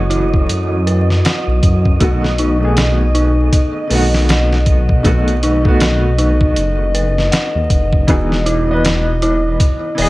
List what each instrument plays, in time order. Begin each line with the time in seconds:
Already playing: detuned saw bass F#1, felt piano E3 A3 C#4 F#4, analog synth pad F#3 F#4, synth bell E4 F#4 F#5, synth texture D#5
0.10 synth bell E4, closed hi-hat
0.34 kick
0.49 detuned saw bass F#2, closed hi-hat
0.87 synth bell B4, closed hi-hat
1.10 snare
1.25 synth bell F#5, snare, closed hi-hat
1.47 detuned saw bass B1
1.63 detuned saw bass F#2, kick, closed hi-hat
1.85 kick
2.00 detuned saw bass B1, felt piano D#3 A3 B3 F#4, synth bell F#4, analog synth pad D#5, kick, closed hi-hat
2.24 snare
2.38 synth bell D#4, closed hi-hat
2.58 felt piano D#3 A3
2.63 felt piano B3 G#4
2.77 snare, closed hi-hat
3.15 synth bell D#4, closed hi-hat
3.53 kick, closed hi-hat
3.87 detuned saw bass B1, felt piano D#3 A3, synth bell B4, open hi-hat
3.91 felt piano B3 F#4
4.14 snare
4.29 synth bell F#5, snare, closed hi-hat
4.53 snare
4.66 kick, closed hi-hat
4.89 kick
5.03 detuned saw bass B1, felt piano D#3 A3 B3 F#4, synth bell F#4, kick, closed hi-hat
5.28 closed hi-hat
5.43 synth bell D#4, closed hi-hat
5.62 felt piano D#3 A3, kick
5.66 felt piano B3 F#4
5.80 snare, closed hi-hat
6.18 synth bell D#4, closed hi-hat
6.41 kick
6.56 detuned saw bass F#1, closed hi-hat
6.94 synth bell B4, closed hi-hat
7.18 snare
7.32 synth bell F#5, snare, closed hi-hat
7.55 detuned saw bass D#2
7.70 detuned saw bass F#1, kick, closed hi-hat
7.93 kick
8.07 detuned saw bass E1, felt piano E3 B3 D#4 G#4, synth bell F#4, kick, closed hi-hat
8.32 snare
8.46 synth bell E4, closed hi-hat
8.67 felt piano E3 B3
8.71 felt piano B4 D#5
8.85 snare, closed hi-hat
9.22 synth bell E4, closed hi-hat
9.60 kick, closed hi-hat
9.95 detuned saw bass E1, felt piano E3 B3, synth bell B4, open hi-hat
9.99 felt piano G#4 D#5